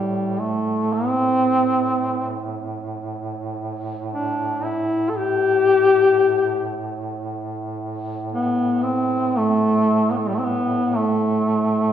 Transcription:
0.00 11.93 A2 soft
0.00 0.41 G3 medium
0.40 0.95 A3 medium
0.93 2.52 C4 loud
4.13 4.66 D4 medium
4.65 5.11 E4 medium
5.10 5.19 A4 soft
5.17 6.74 G4 loud
8.32 8.84 B3 medium
8.83 9.39 C4 medium
9.38 10.12 A3 loud
10.11 10.19 B3 medium
10.18 10.29 A3 medium
10.27 10.36 G3 medium
10.34 10.40 A3 medium
10.39 10.45 C4 medium
10.44 10.99 B3 medium
10.97 11.93 A3 medium

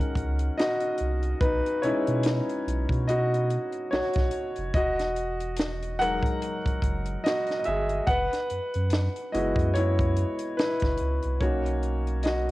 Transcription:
0.00 0.54 D#3 soft
0.00 0.54 G#3 soft
0.00 0.54 C#4 medium
0.00 0.59 F#4 medium
0.00 0.13 A#4 medium
0.00 0.58 D#5 medium
0.00 0.12 F#5 loud
0.00 closed hi-hat soft
0.15 0.50 C#2 medium
0.15 kick medium
0.15 closed hi-hat medium
0.39 closed hi-hat medium
0.58 1.38 F#4 medium
0.58 1.43 D#5 medium
0.58 snare loud
0.58 closed hi-hat medium
0.80 closed hi-hat soft
0.98 1.34 C2 medium
0.98 closed hi-hat medium
1.23 closed hi-hat soft
1.41 1.61 B1 loud
1.41 1.80 D#4 medium
1.41 1.79 B4 medium
1.41 kick loud
1.41 closed hi-hat medium
1.66 closed hi-hat medium
1.82 1.93 B2 soft
1.82 2.41 G#3 soft
1.82 2.41 C#4 medium
1.82 2.40 D#4 medium
1.82 2.62 E4 medium
1.82 2.61 C#5 medium
1.82 closed hi-hat medium
2.07 2.41 B2 loud
2.07 closed hi-hat soft
2.23 snare loud
2.23 closed hi-hat loud
2.49 closed hi-hat soft
2.67 2.86 B1 medium
2.67 closed hi-hat medium
2.89 3.58 B2 medium
2.89 kick medium
2.89 closed hi-hat soft
3.08 3.88 F#4 medium
3.08 3.87 D#5 medium
3.08 closed hi-hat medium
3.34 closed hi-hat soft
3.50 closed hi-hat medium
3.72 closed hi-hat medium
3.91 4.02 B1 soft
3.91 4.71 F#4 medium
3.91 4.76 C#5 medium
3.91 snare loud
3.91 closed hi-hat medium
4.13 4.30 B1 medium
4.13 kick medium
4.13 snare soft
4.13 closed hi-hat soft
4.31 closed hi-hat medium
4.56 4.71 F1 medium
4.56 closed hi-hat soft
4.74 6.19 E1 loud
4.74 5.96 F#4 medium
4.74 6.03 D#5 loud
4.74 kick loud
4.74 closed hi-hat medium
4.99 snare soft
4.99 closed hi-hat medium
5.16 closed hi-hat medium
5.40 closed hi-hat soft
5.57 snare loud
5.57 closed hi-hat medium
5.83 closed hi-hat soft
5.99 6.57 F#3 soft
5.99 6.58 G#3 soft
5.99 6.58 D#4 medium
5.99 7.21 A#4 medium
5.99 7.28 F#5 loud
5.99 closed hi-hat medium
6.23 kick medium
6.23 closed hi-hat soft
6.42 closed hi-hat medium
6.66 6.73 F#1 medium
6.66 kick medium
6.66 closed hi-hat soft
6.82 7.16 F#1 medium
6.82 kick medium
6.82 closed hi-hat medium
7.06 closed hi-hat medium
7.24 7.58 F#4 medium
7.24 7.58 D#5 loud
7.24 snare loud
7.24 closed hi-hat medium
7.47 snare soft
7.47 closed hi-hat soft
7.59 7.65 D#5 medium
7.64 8.00 G1 medium
7.64 8.05 G#4 medium
7.64 8.08 E5 medium
7.64 closed hi-hat medium
7.89 closed hi-hat soft
8.07 8.28 F#1 loud
8.07 9.29 B4 medium
8.07 9.36 F#5 loud
8.07 kick loud
8.07 closed hi-hat medium
8.33 snare soft
8.33 closed hi-hat medium
8.50 8.60 F#2 soft
8.50 closed hi-hat medium
8.74 9.08 F#2 medium
8.74 closed hi-hat soft
8.90 snare loud
8.90 closed hi-hat loud
9.16 closed hi-hat soft
9.32 9.53 F#1 loud
9.32 11.37 G#3 soft
9.32 11.37 B3 soft
9.32 9.75 E4 medium
9.32 9.72 F#4 medium
9.32 9.75 D#5 medium
9.32 closed hi-hat medium
9.56 10.25 F#2 medium
9.56 kick medium
9.56 closed hi-hat soft
9.74 10.54 E4 medium
9.74 10.60 C#5 medium
9.74 closed hi-hat medium
9.99 kick medium
9.99 closed hi-hat soft
10.17 closed hi-hat medium
10.39 closed hi-hat medium
10.57 11.20 E4 medium
10.57 11.19 B4 medium
10.57 snare loud
10.57 closed hi-hat medium
10.80 10.97 F#1 medium
10.80 kick medium
10.80 snare soft
10.80 closed hi-hat soft
10.98 11.20 C#2 medium
10.98 closed hi-hat medium
11.23 11.38 C2 medium
11.23 closed hi-hat soft
11.40 12.51 B1 medium
11.40 12.51 A#3 soft
11.40 12.51 C#4 soft
11.40 12.51 D#4 soft
11.40 12.21 F#4 medium
11.40 12.26 C#5 medium
11.40 kick medium
11.40 closed hi-hat medium
11.66 closed hi-hat soft
11.83 closed hi-hat medium
12.07 closed hi-hat soft
12.23 12.51 F#4 medium
12.23 12.51 D#5 medium
12.23 snare medium
12.23 closed hi-hat medium

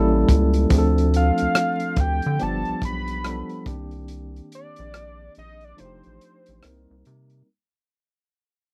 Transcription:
0.00 0.25 A1 loud
0.00 0.58 G3 medium
0.00 0.58 A#3 medium
0.00 0.58 C#4 medium
0.00 0.58 E4 medium
0.00 0.59 A4 loud
0.29 0.66 C#2 medium
0.29 kick medium
0.29 closed hi-hat medium
0.54 closed hi-hat soft
0.69 1.31 D2 loud
0.69 2.08 F3 medium
0.69 2.08 A3 medium
0.69 2.09 C4 medium
0.69 2.09 D4 medium
0.69 0.79 G#4 medium
0.69 kick loud
0.69 closed hi-hat medium
0.78 2.13 A4 loud
0.98 closed hi-hat soft
1.14 2.02 F5 medium
1.14 closed hi-hat medium
1.38 closed hi-hat soft
1.42 1.48 D2 soft
1.55 cross-stick loud
1.55 closed hi-hat medium
1.80 closed hi-hat soft
1.96 2.21 D2 medium
1.96 2.44 G5 medium
1.96 kick loud
1.96 cross-stick soft
1.96 closed hi-hat medium
2.22 2.39 D3 medium
2.22 closed hi-hat soft
2.39 2.64 G1 loud
2.39 3.11 F3 medium
2.39 3.12 G3 medium
2.39 3.12 B3 medium
2.39 3.12 D4 medium
2.39 3.13 G4 medium
2.39 2.83 A5 medium
2.39 closed hi-hat medium
2.65 2.74 B1 soft
2.65 closed hi-hat soft
2.81 3.43 B1 medium
2.81 3.64 B5 loud
2.81 kick loud
2.81 cross-stick soft
2.81 closed hi-hat medium
3.08 closed hi-hat medium
3.23 3.66 F3 medium
3.23 3.66 G3 medium
3.23 3.67 B3 medium
3.23 3.66 D4 medium
3.23 3.67 A4 medium
3.23 cross-stick loud
3.23 closed hi-hat medium
3.50 closed hi-hat soft
3.66 4.41 C2 medium
3.66 5.04 D#3 medium
3.66 5.05 A#3 medium
3.66 5.05 C4 medium
3.66 5.05 D4 medium
3.66 5.05 G4 medium
3.66 kick loud
3.66 closed hi-hat medium
3.91 closed hi-hat soft
4.08 closed hi-hat medium
4.36 closed hi-hat soft
4.52 5.33 D5 loud
4.52 closed hi-hat medium
4.76 5.29 A#1 medium
4.76 closed hi-hat soft
4.94 cross-stick loud
4.94 closed hi-hat medium
5.35 5.74 A#1 medium
5.35 5.66 D#5 loud
5.35 closed hi-hat medium
5.61 5.81 D5 loud
5.61 closed hi-hat soft
5.77 6.02 F1 loud
5.77 6.49 F3 medium
5.77 6.50 A3 medium
5.77 6.50 D4 medium
5.77 6.50 D#4 medium
5.77 5.86 F4 medium
5.77 7.05 C5 medium
5.77 closed hi-hat medium
5.86 6.54 G4 medium
6.03 6.19 A1 medium
6.03 closed hi-hat soft
6.21 closed hi-hat medium
6.46 6.61 A1 medium
6.46 closed hi-hat medium
6.62 6.87 C2 loud
6.62 7.34 G3 medium
6.62 7.34 A#3 medium
6.62 7.35 C4 medium
6.62 7.35 D#4 medium
6.62 7.35 A#4 medium
6.62 cross-stick medium
6.62 closed hi-hat medium
6.91 7.04 C2 loud
7.05 7.43 C3 loud
7.05 closed hi-hat medium
7.30 closed hi-hat soft

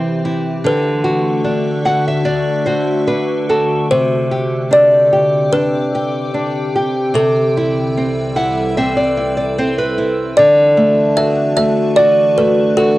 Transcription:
0.00 0.61 C3 medium
0.00 0.61 E3 medium
0.00 0.62 C4 medium
0.00 0.63 C4 medium
0.00 0.24 E4 medium
0.00 0.61 G4 medium
0.00 0.62 C5 medium
0.25 0.64 E4 medium
0.64 3.86 D3 medium
0.64 7.12 D3 medium
0.64 3.87 A3 medium
0.64 3.87 F#4 medium
0.64 3.05 B4 medium
1.04 1.84 F#4 medium
1.44 2.24 D4 medium
1.85 2.66 F#4 medium
1.85 2.04 F#5 medium
2.08 2.26 E5 medium
2.25 3.06 D4 medium
2.25 2.63 D5 medium
2.66 3.48 F#4 medium
2.66 3.05 C5 medium
3.07 3.87 D4 medium
3.07 3.46 B4 medium
3.49 3.89 F#4 medium
3.49 3.87 A4 medium
3.91 7.12 C3 medium
3.91 10.34 C4 medium
3.91 7.13 G4 medium
3.91 4.68 C5 medium
4.31 5.12 G4 medium
4.71 5.51 D4 medium
4.71 5.50 D5 medium
5.13 5.94 G4 soft
5.52 6.33 D4 medium
5.52 7.20 B4 medium
5.95 6.74 G4 medium
6.34 7.13 D4 medium
6.76 7.15 G4 medium
7.14 10.35 C2 medium
7.14 10.33 C3 medium
7.14 10.34 E3 medium
7.14 9.54 A4 medium
7.14 10.34 A4 medium
7.57 8.35 E4 medium
7.97 8.77 C4 soft
8.36 8.77 E4 soft
8.36 8.74 F#5 medium
8.77 9.57 C4 medium
8.77 8.96 E5 medium
8.97 9.34 D5 medium
9.17 9.97 E4 medium
9.37 9.56 D5 medium
9.58 10.35 C4 medium
9.58 9.77 C5 medium
9.78 10.34 B4 medium
9.98 10.36 E4 medium
10.37 12.98 D3 medium
10.37 12.98 E3 medium
10.37 12.98 D4 medium
10.37 12.98 F#4 medium
10.37 11.19 D5 medium
10.77 11.56 A3 medium
11.17 11.97 F#4 medium
11.17 11.56 E5 medium
11.57 12.37 A3 medium
11.57 11.75 E5 medium
11.96 12.76 F#4 medium
11.96 12.14 D5 loud
12.38 12.98 A3 medium
12.38 12.79 B4 medium
12.77 12.98 F#4 medium
12.77 12.98 A4 medium

